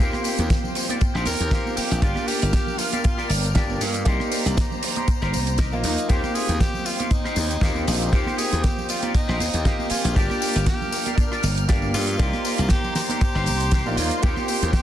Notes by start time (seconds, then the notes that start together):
Already playing: A#3 D#4 C5 G5
0.00 D#2 C4 F4 G4 A#4 C5, closed hi-hat, tambourine
0.13 cross-stick, tambourine, high conga
0.24 open hi-hat, tambourine
0.39 D#2, closed hi-hat, tambourine
0.49 kick, snare, closed hi-hat, tambourine, high conga
0.64 tambourine, low conga
0.74 muted clean electric guitar stroke, open hi-hat, tambourine
0.89 D#4 G4 A#4 D5, closed hi-hat, tambourine, high conga
1.01 kick, closed hi-hat, tambourine
1.14 A#1 D#4 G4 A#4 C5, cross-stick, tambourine
1.25 D#2 A#4, open hi-hat, tambourine, high conga
1.39 D#2, muted clean electric guitar stroke, closed hi-hat, tambourine
1.51 A#3 C4 D#4 F4 G4 A#4 C5, kick, snare, closed hi-hat, tambourine
1.66 tambourine, high conga
1.77 G4, muted slap bass stroke, open hi-hat, tambourine
1.91 A#1, closed hi-hat, tambourine
2.01 G1 A#3 D4 F4 G4 A#4 D5 F6, kick, closed hi-hat, tambourine
2.16 cross-stick, tambourine, high conga
2.28 G4, open hi-hat, tambourine
2.42 G1, closed hi-hat, tambourine
2.53 kick, snare, closed hi-hat, tambourine, high conga
2.67 tambourine, low conga
2.78 F4, muted clean electric guitar stroke, open hi-hat, tambourine
2.92 F4 G4 A#4 D5, closed hi-hat, tambourine, high conga
3.04 F4, kick, closed hi-hat, tambourine
3.17 F4 G4 A#4 D5, cross-stick, tambourine
3.29 G1 D4, open hi-hat, tambourine, high conga
3.43 muted clean electric guitar stroke, closed hi-hat, tambourine
3.54 G1 A#3 D4 F4 G4 A#4 D5, kick, snare, closed hi-hat, tambourine
3.70 tambourine, high conga
3.81 G2, open hi-hat, tambourine
3.94 closed hi-hat, tambourine
4.05 C2 A#3 D#4 G4 A#4 C5 D5 A#5, kick, closed hi-hat, tambourine
4.20 cross-stick, tambourine, high conga
4.32 open hi-hat, tambourine
4.46 C2, closed hi-hat, tambourine
4.57 kick, snare, closed hi-hat, tambourine, high conga
4.71 tambourine, low conga
4.82 muted clean electric guitar stroke, open hi-hat, tambourine
4.96 D#4 G4 A#4 C5, closed hi-hat, tambourine, high conga
5.08 kick, closed hi-hat, tambourine
5.21 G1 D#4 G4 A#4 C5, cross-stick, tambourine
5.33 C2, open hi-hat, tambourine, high conga
5.47 muted clean electric guitar stroke, closed hi-hat, tambourine
5.58 D#4 G4 A#4 D#5, kick, snare, closed hi-hat, tambourine
5.72 A#1 A#3 D#4 F4, tambourine, high conga
5.84 D#2 D#4, open hi-hat, tambourine, low conga
5.98 closed hi-hat, tambourine
6.08 D#2 A#3 C4 D#4 F4 G4 A#4 C5 G5, kick, closed hi-hat, tambourine
6.24 cross-stick, tambourine, high conga
6.35 G#4, open hi-hat, tambourine
6.49 D#2, closed hi-hat, tambourine
6.60 G4, kick, snare, closed hi-hat, tambourine, high conga
6.74 tambourine, low conga
6.85 F4, muted clean electric guitar stroke, open hi-hat, tambourine
6.99 D#4 G4 A#4 C5, closed hi-hat, tambourine, high conga
7.11 D#4, kick, closed hi-hat, tambourine
7.24 D#4 G4 A#4 C5, cross-stick, tambourine
7.36 D#2, open hi-hat, tambourine, high conga
7.50 muted clean electric guitar stroke, closed hi-hat, tambourine
7.61 D#2 A#3 C4 D#4 F4 G4 A#4 C5, kick, snare, closed hi-hat, tambourine
7.75 tambourine, high conga
7.87 A#1 D#4, open hi-hat, tambourine
8.02 closed hi-hat, tambourine
8.12 D#2 A#3 C4 D#4 F4 G4 A#4 C5, kick, closed hi-hat, tambourine
8.26 cross-stick, tambourine, high conga
8.38 G#4, open hi-hat, tambourine
8.52 D#2, closed hi-hat, tambourine
8.64 G4, kick, snare, closed hi-hat, tambourine, high conga
8.77 tambourine, low conga
8.88 F4 D5, muted clean electric guitar stroke, open hi-hat, tambourine
9.02 D#4 G4 A#4 D5, closed hi-hat, tambourine, high conga
9.14 D#4 D#5, kick, closed hi-hat, tambourine
9.27 A#1 D#4 G4 A#4 C5, cross-stick, tambourine
9.39 D#2 F5, open hi-hat, tambourine, high conga
9.53 D#2, muted clean electric guitar stroke, closed hi-hat, tambourine
9.64 A#3 C4 D#4 F4 G4 A#4 C5 G5, kick, snare, closed hi-hat, tambourine
9.79 tambourine, high conga
9.90 F4 G#5, muted slap bass stroke, open hi-hat, tambourine
10.04 A#1, closed hi-hat, tambourine
10.15 G1 A#3 D4 F4 G4 A#4 D5 F6, kick, closed hi-hat, tambourine
10.30 cross-stick, tambourine, high conga
10.42 open hi-hat, tambourine
10.56 G1, closed hi-hat, tambourine
10.66 G4, kick, snare, closed hi-hat, tambourine, high conga
10.81 tambourine, low conga
10.92 muted clean electric guitar stroke, open hi-hat, tambourine
11.06 F4 G4 A#4 D5, closed hi-hat, tambourine, high conga
11.17 D4, kick, closed hi-hat, tambourine
11.31 F4 G4 A#4 D5, cross-stick, tambourine
11.43 G1, open hi-hat, tambourine, high conga
11.56 muted clean electric guitar stroke, closed hi-hat, tambourine
11.68 A#3 D4 F4 G4 A#4 D5, kick, snare, closed hi-hat, tambourine
11.82 tambourine, high conga
11.94 G2 F4, open hi-hat, tambourine
12.07 closed hi-hat, tambourine
12.18 C2 A#3 D#4 G4 A#4 C5 D5 A#5 C6, kick, closed hi-hat, tambourine
12.33 cross-stick, tambourine, high conga
12.45 open hi-hat, tambourine
12.58 C2, closed hi-hat, tambourine
12.69 G4, kick, snare, closed hi-hat, tambourine, high conga
12.84 tambourine, low conga
12.95 G4, muted clean electric guitar stroke, snare, open hi-hat, tambourine
13.09 D#4 G4 A#4 C5, closed hi-hat, tambourine, high conga
13.21 kick, closed hi-hat, tambourine
13.34 G1 D#4 G4 A#4 C5, cross-stick, tambourine
13.46 C2, open hi-hat, tambourine, high conga
13.60 muted clean electric guitar stroke, closed hi-hat, tambourine
13.71 D#4 G4 A#4 C5, kick, snare, closed hi-hat, tambourine
13.86 A#1 A#3 D#4 F4 D5, tambourine, high conga
13.97 D#2 F4, open hi-hat, tambourine, low conga
14.11 closed hi-hat, tambourine
14.22 D#2 A#3 C4 D#4 F4 G4 A#4 C5 G5, kick, closed hi-hat, tambourine
14.36 cross-stick, tambourine, high conga
14.48 open hi-hat, tambourine
14.62 D#2, closed hi-hat, tambourine
14.73 G4, kick, snare, closed hi-hat, tambourine, high conga